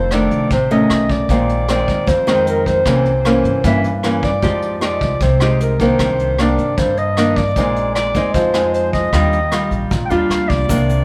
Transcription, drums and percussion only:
0.11 cross-stick medium
0.11 closed hi-hat soft
0.31 closed hi-hat soft
0.50 kick medium
0.50 closed hi-hat soft
0.70 closed hi-hat soft
0.90 cross-stick medium
0.90 closed hi-hat soft
1.09 kick medium
1.09 closed hi-hat soft
1.29 kick medium
1.29 closed hi-hat soft
1.49 closed hi-hat soft
1.69 cross-stick medium
1.69 closed hi-hat soft
1.88 kick medium
1.88 closed hi-hat soft
2.08 kick medium
2.08 closed hi-hat soft
2.28 cross-stick medium
2.28 closed hi-hat soft
2.47 closed hi-hat soft
2.66 kick soft
2.66 closed hi-hat soft
2.85 kick medium
2.85 cross-stick medium
2.85 closed hi-hat soft
3.05 closed hi-hat soft
3.25 cross-stick medium
3.25 closed hi-hat soft
3.44 closed hi-hat soft
3.64 kick medium
3.64 closed hi-hat soft
3.84 closed hi-hat soft
4.03 cross-stick medium
4.03 closed hi-hat soft
4.23 kick medium
4.23 closed hi-hat soft
4.43 kick medium
4.43 closed hi-hat soft
4.62 closed hi-hat soft
4.81 cross-stick medium
4.81 closed hi-hat soft
5.01 kick medium
5.01 closed hi-hat soft
5.20 kick medium
5.20 closed hi-hat soft
5.40 cross-stick medium
5.40 closed hi-hat soft
5.60 closed hi-hat soft
5.80 kick medium
5.80 closed hi-hat soft
5.99 kick medium
5.99 cross-stick medium
5.99 closed hi-hat soft
6.19 closed hi-hat soft
6.39 cross-stick medium
6.39 closed hi-hat soft
6.58 closed hi-hat soft
6.78 kick medium
6.78 closed hi-hat soft
6.97 closed hi-hat soft
7.17 cross-stick medium
7.17 closed hi-hat soft
7.36 kick medium
7.36 closed hi-hat soft
7.56 kick medium
7.56 closed hi-hat soft
7.76 closed hi-hat soft
7.95 cross-stick medium
7.95 closed hi-hat soft
8.15 kick medium
8.15 closed hi-hat soft
8.34 kick medium
8.34 closed hi-hat soft
8.54 cross-stick medium
8.54 closed hi-hat soft
8.74 closed hi-hat soft
8.93 kick medium
8.93 closed hi-hat soft
9.13 kick medium
9.13 cross-stick medium
9.13 closed hi-hat soft
9.32 closed hi-hat soft
9.52 cross-stick medium
9.52 closed hi-hat soft
9.71 closed hi-hat soft
9.91 kick medium
9.91 closed hi-hat soft
10.11 closed hi-hat soft
10.30 cross-stick medium
10.30 closed hi-hat soft
10.50 kick medium
10.50 closed hi-hat soft
10.69 kick medium
10.69 closed hi-hat soft
10.69 shaker medium
10.89 closed hi-hat soft
10.89 shaker soft

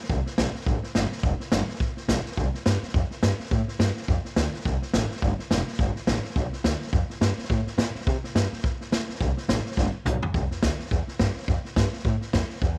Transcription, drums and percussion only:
0.04 snare soft
0.09 kick loud
0.09 snare soft
0.26 snare soft
0.38 snare loud
0.38 hi-hat pedal loud
0.55 snare soft
0.60 snare soft
0.66 kick loud
0.66 snare soft
0.83 snare soft
0.95 snare loud
0.95 hi-hat pedal medium
1.12 snare soft
1.17 snare soft
1.23 kick loud
1.23 snare soft
1.40 snare soft
1.52 snare loud
1.52 hi-hat pedal loud
1.68 snare soft
1.74 snare soft
1.80 kick loud
1.80 snare soft
1.97 snare soft
2.09 snare medium
2.09 hi-hat pedal medium
2.26 snare soft
2.32 snare soft
2.37 kick loud
2.37 snare soft
2.54 snare soft
2.66 snare loud
2.66 hi-hat pedal loud
2.83 snare soft
2.88 snare soft
2.94 kick loud
2.94 snare soft
3.11 snare soft
3.23 snare loud
3.23 hi-hat pedal medium
3.39 snare soft
3.45 snare soft
3.51 kick loud
3.51 snare soft
3.68 snare soft
3.80 snare loud
3.80 hi-hat pedal loud
3.96 snare soft
4.02 snare soft
4.08 kick loud
4.08 snare soft
4.25 snare soft
4.36 snare loud
4.36 hi-hat pedal medium
4.53 snare soft
4.60 snare soft
4.65 kick loud
4.65 snare soft
4.82 snare soft
4.93 snare loud
4.93 hi-hat pedal loud
5.10 snare soft
5.16 snare soft
5.22 kick loud
5.22 snare soft
5.39 snare soft
5.51 snare loud
5.51 hi-hat pedal medium
5.67 snare soft
5.73 snare soft
5.79 kick loud
5.79 snare soft
5.96 snare soft
6.07 snare loud
6.07 hi-hat pedal medium
6.24 snare soft
6.30 snare soft
6.36 kick loud
6.36 snare soft
6.53 snare soft
6.64 snare loud
6.64 hi-hat pedal medium
6.81 snare soft
6.87 snare soft
6.93 kick loud
6.93 snare soft
7.10 snare soft
7.21 snare loud
7.21 hi-hat pedal medium
7.38 snare soft
7.44 snare soft
7.50 kick loud
7.50 snare soft
7.67 snare soft
7.78 snare loud
7.78 hi-hat pedal medium
7.95 snare soft
8.01 snare soft
8.07 kick loud
8.07 snare soft
8.24 snare soft
8.36 snare loud
8.36 hi-hat pedal medium
8.52 snare soft
8.58 snare soft
8.64 kick loud
8.64 snare soft
8.81 snare soft
8.92 snare loud
8.92 hi-hat pedal medium
9.09 snare soft
9.15 snare soft
9.21 kick loud
9.21 snare soft
9.37 snare soft
9.49 snare loud
9.49 hi-hat pedal loud
9.66 snare soft
9.71 snare soft
9.77 kick loud
9.77 snare medium
10.06 hi-hat pedal medium
10.06 mid tom medium
10.23 floor tom medium
10.34 kick loud
10.34 snare soft
10.51 snare soft
10.63 kick loud
10.63 snare loud
10.63 hi-hat pedal medium
10.79 snare soft
10.86 snare soft
10.91 kick loud
10.91 snare soft
11.08 snare soft
11.19 kick medium
11.19 snare loud
11.19 hi-hat pedal medium
11.36 snare soft
11.42 snare soft
11.48 kick loud
11.48 snare soft
11.65 snare soft
11.76 kick loud
11.76 snare loud
11.76 hi-hat pedal medium
11.93 snare soft
11.99 snare soft
12.05 kick loud
12.05 snare soft
12.21 snare soft
12.33 kick medium
12.33 snare loud
12.33 hi-hat pedal medium
12.50 snare soft
12.56 snare soft
12.62 kick loud
12.62 snare soft

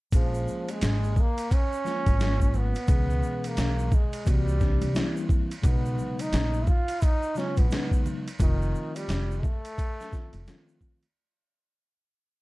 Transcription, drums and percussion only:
0.12 kick loud
0.12 ride medium
0.12 shaker medium
0.34 shaker soft
0.48 shaker soft
0.68 ride medium
0.68 shaker soft
0.81 snare loud
0.81 hi-hat pedal medium
0.81 ride medium
0.81 high conga soft
0.81 shaker medium
1.04 shaker soft
1.16 kick medium
1.16 low conga medium
1.16 shaker soft
1.38 ride medium
1.38 shaker soft
1.51 kick loud
1.51 ride medium
1.51 shaker medium
1.73 shaker soft
1.86 snare soft
1.86 shaker soft
2.06 kick medium
2.06 ride soft
2.06 high conga soft
2.06 shaker soft
2.20 snare loud
2.20 hi-hat pedal medium
2.20 ride medium
2.20 shaker medium
2.40 kick medium
2.40 shaker medium
2.54 low conga medium
2.54 shaker soft
2.75 ride medium
2.75 shaker soft
2.88 kick loud
2.88 ride medium
2.88 shaker medium
3.10 shaker soft
3.23 shaker soft
3.44 ride medium
3.44 shaker soft
3.57 snare loud
3.57 hi-hat pedal medium
3.57 ride medium
3.57 high conga soft
3.57 shaker medium
3.79 shaker soft
3.92 kick medium
3.92 low conga medium
3.92 shaker soft
4.13 ride medium
4.13 shaker soft
4.26 kick medium
4.26 ride medium
4.26 shaker medium
4.48 shaker soft
4.60 kick medium
4.60 snare soft
4.60 shaker soft
4.81 ride medium
4.81 high conga medium
4.81 shaker soft
4.95 snare loud
4.95 hi-hat pedal medium
4.95 ride medium
4.95 shaker soft
5.17 shaker medium
5.29 kick medium
5.29 low conga medium
5.29 shaker soft
5.51 ride medium
5.51 shaker soft
5.63 kick loud
5.63 ride medium
5.63 shaker medium
5.85 shaker soft
5.99 shaker soft
6.19 ride medium
6.19 shaker soft
6.33 snare loud
6.33 hi-hat pedal medium
6.33 ride medium
6.33 high conga soft
6.33 shaker medium
6.54 shaker soft
6.67 kick medium
6.67 low conga medium
6.67 shaker soft
6.88 ride medium
6.88 shaker soft
7.01 kick loud
7.01 ride medium
7.01 shaker medium
7.23 shaker soft
7.36 snare soft
7.36 shaker soft
7.57 kick medium
7.57 ride medium
7.57 high conga soft
7.57 shaker soft
7.71 snare loud
7.71 hi-hat pedal medium
7.71 ride medium
7.71 shaker medium
7.91 kick medium
7.91 shaker soft
8.06 low conga medium
8.06 shaker soft
8.28 ride medium
8.28 shaker soft
8.40 kick loud
8.40 ride medium
8.40 shaker medium
8.62 shaker soft
8.75 shaker soft
8.96 ride medium
8.96 shaker soft
9.09 snare loud
9.09 hi-hat pedal medium
9.09 ride medium
9.09 high conga soft
9.09 shaker medium
9.31 shaker soft
9.43 kick loud
9.43 low conga medium
9.43 shaker soft
9.65 ride medium
9.65 shaker medium
9.78 kick medium
9.78 ride medium
9.78 shaker medium
10.00 snare soft
10.00 shaker soft
10.13 kick medium
10.13 snare soft
10.13 shaker soft
10.33 ride medium
10.33 high conga soft
10.33 shaker soft
10.47 snare loud
10.47 hi-hat pedal medium
10.47 ride medium
10.47 shaker medium
10.68 shaker soft
10.81 kick medium
10.81 low conga medium
10.81 shaker soft
11.03 ride medium
11.03 shaker soft

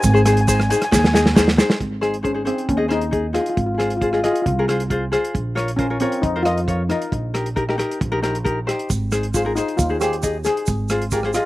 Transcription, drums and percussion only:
0.03 kick loud
0.03 closed hi-hat medium
0.03 shaker loud
0.16 shaker soft
0.26 cross-stick medium
0.26 closed hi-hat medium
0.26 shaker medium
0.37 closed hi-hat medium
0.37 shaker soft
0.48 kick medium
0.48 closed hi-hat medium
0.48 shaker loud
0.60 cross-stick medium
0.60 shaker soft
0.70 closed hi-hat medium
0.70 shaker medium
0.82 cross-stick medium
0.82 closed hi-hat medium
0.82 shaker soft
0.92 kick loud
0.92 snare medium
0.92 shaker medium
1.04 snare medium
1.04 shaker soft
1.14 snare medium
1.14 shaker medium
1.26 snare medium
1.26 shaker soft
1.36 kick medium
1.36 snare loud
1.36 shaker medium
1.48 snare medium
1.48 shaker soft
1.58 snare loud
1.58 shaker medium
1.70 snare medium
1.70 shaker soft
1.80 kick medium
1.80 closed hi-hat soft
2.03 cross-stick medium
2.03 closed hi-hat medium
2.14 closed hi-hat soft
2.25 kick medium
2.25 closed hi-hat soft
2.47 closed hi-hat medium
2.58 closed hi-hat soft
2.69 kick loud
2.69 closed hi-hat medium
2.90 cross-stick medium
2.90 closed hi-hat medium
3.01 closed hi-hat soft
3.13 kick medium
3.13 closed hi-hat soft
3.35 cross-stick medium
3.35 closed hi-hat medium
3.46 closed hi-hat soft
3.57 kick medium
3.57 closed hi-hat soft
3.80 cross-stick medium
3.80 closed hi-hat medium
3.90 closed hi-hat medium
4.02 kick medium
4.02 closed hi-hat medium
4.13 cross-stick medium
4.24 cross-stick medium
4.24 closed hi-hat medium
4.35 closed hi-hat medium
4.46 kick loud
4.46 closed hi-hat medium
4.69 cross-stick medium
4.69 closed hi-hat medium
4.80 closed hi-hat medium
4.90 kick medium
4.90 closed hi-hat medium
5.13 cross-stick medium
5.13 closed hi-hat medium
5.25 closed hi-hat medium
5.35 kick medium
5.35 closed hi-hat soft
5.57 cross-stick medium
5.57 closed hi-hat medium
5.68 closed hi-hat medium
5.79 kick medium
5.79 closed hi-hat soft
6.00 closed hi-hat medium
6.12 closed hi-hat soft
6.23 kick loud
6.23 closed hi-hat medium
6.45 cross-stick medium
6.45 closed hi-hat medium
6.57 closed hi-hat soft
6.68 kick medium
6.68 closed hi-hat medium
6.90 cross-stick medium
6.90 closed hi-hat medium
7.02 closed hi-hat medium
7.12 kick medium
7.12 closed hi-hat soft
7.35 cross-stick medium
7.35 closed hi-hat medium
7.46 closed hi-hat soft
7.57 kick medium
7.57 closed hi-hat soft
7.69 cross-stick medium
7.79 cross-stick medium
7.79 closed hi-hat medium
7.91 closed hi-hat medium
8.01 kick loud
8.01 closed hi-hat medium
8.24 cross-stick medium
8.24 closed hi-hat medium
8.35 closed hi-hat medium
8.46 kick medium
8.46 closed hi-hat medium
8.69 cross-stick medium
8.69 closed hi-hat medium
8.79 closed hi-hat medium
8.90 kick medium
8.90 closed hi-hat medium
8.90 shaker medium
9.12 cross-stick medium
9.12 closed hi-hat medium
9.12 shaker medium
9.23 closed hi-hat medium
9.34 kick medium
9.34 closed hi-hat medium
9.34 shaker medium
9.57 closed hi-hat medium
9.57 shaker medium
9.68 closed hi-hat medium
9.79 kick loud
9.79 closed hi-hat medium
9.79 shaker medium
10.01 cross-stick medium
10.01 closed hi-hat medium
10.01 shaker medium
10.13 closed hi-hat medium
10.23 kick medium
10.23 closed hi-hat medium
10.23 shaker medium
10.44 cross-stick medium
10.44 closed hi-hat medium
10.44 shaker medium
10.57 closed hi-hat medium
10.66 kick medium
10.66 closed hi-hat medium
10.66 shaker medium
10.89 cross-stick medium
10.89 closed hi-hat medium
10.89 shaker medium
11.02 closed hi-hat soft
11.11 kick medium
11.11 closed hi-hat medium
11.11 shaker medium
11.23 cross-stick medium
11.34 cross-stick medium
11.34 closed hi-hat medium
11.34 shaker medium

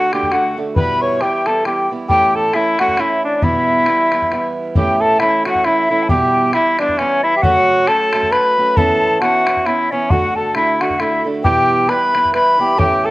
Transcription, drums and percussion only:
0.13 bodhran medium
0.23 bodhran soft
0.32 bodhran medium
0.76 bodhran medium
1.21 bodhran medium
1.46 bodhran medium
1.65 bodhran medium
2.09 bodhran medium
2.53 bodhran soft
2.79 bodhran medium
2.88 bodhran soft
2.97 bodhran medium
3.42 bodhran medium
3.86 bodhran medium
4.12 bodhran medium
4.22 bodhran soft
4.32 bodhran soft
4.76 bodhran medium
5.20 bodhran medium
5.46 bodhran medium
5.55 bodhran soft
5.65 bodhran medium
6.09 bodhran medium
6.53 bodhran medium
6.79 bodhran medium
6.89 bodhran soft
6.99 bodhran medium
7.43 bodhran medium
7.87 bodhran medium
8.13 bodhran medium
8.23 bodhran soft
8.32 bodhran medium
8.77 bodhran medium
9.22 bodhran medium
9.47 bodhran medium
9.57 bodhran soft
9.66 bodhran medium
10.10 bodhran medium
10.55 bodhran medium
10.81 bodhran medium
10.90 bodhran soft
11.00 bodhran medium
11.44 bodhran medium
11.89 bodhran medium
12.15 bodhran medium
12.25 bodhran soft
12.34 bodhran medium
12.79 bodhran medium

